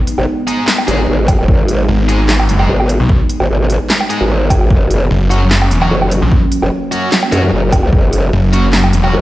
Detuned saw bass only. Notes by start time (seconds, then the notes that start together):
1.89 G#1
2.49 F#1
3.00 B1
5.11 F#1
5.71 E1
6.22 A#1
8.33 F#1
8.93 E1